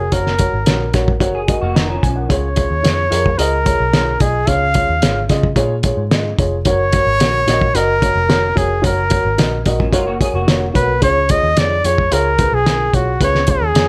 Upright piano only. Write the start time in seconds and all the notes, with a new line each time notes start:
0.12 F#4 A#4 C#5
0.39 F#4 A#4 C#5
0.67 F#4 A#4 C#5
0.94 F#4 A#4 C#5
1.21 F#4 A#4 C#5
1.48 F#4 A#4 D#5
1.75 A#4 F#5
1.89 C#5 A#5
2.03 G#5
2.16 A#4 F#5
2.29 C#3 F4 G#4 C#5
2.56 F4 G#4 C#5
2.83 F4 G#4 C#5
3.10 F4 G#4 A#4
3.38 F4 G#4 D#5
3.65 F4 G#4 C#5
3.94 F4 G#4 C#5
4.21 F4 G#4 D#5
4.47 C#3 F4 G#4 C#5
4.75 F4 G#4 C#5
5.02 F4 G#4 C#5
5.29 F4 G#4 D#5
5.56 F4 G#4 C#5
5.85 F4 G#4 C#5
6.12 F4 G#4 D#5
6.39 F4 G#4 C#5
6.66 F#4 A#4 C#5
6.92 F#4 A#4 C#5
7.21 F#4 A#4 C#5
7.48 F#4 A#4 D#5
7.75 F#4 A#4 D#5
8.02 F#4 A#4 C#5
8.29 F#4 A#4 C#5
8.56 F#4 A#4 C#5
8.82 F#4 A#4 C#5
9.10 F#4 A#4 C#5
9.38 F#4 A#4 D#5
9.66 F#4 A#4 D#5
9.93 F#4 A#4 C#5
10.21 F#4 A#4 C#5
10.47 F#4 A#4 C#5
10.74 F#4 A#4 C#5
11.01 C#3 F4 G#4 C#5
11.29 F4 G#4 C#5
11.57 F4 G#4 C#5
11.85 F4 G#4 C#5
12.11 F4 G#4 C#5
12.39 F4 G#4 B4
12.66 F4 G#4 A#4
12.93 F4 G#4 C#5
13.21 C#3 F4 G#4 B4
13.47 F4 G#4 C#5
13.76 F4 G#4 C#5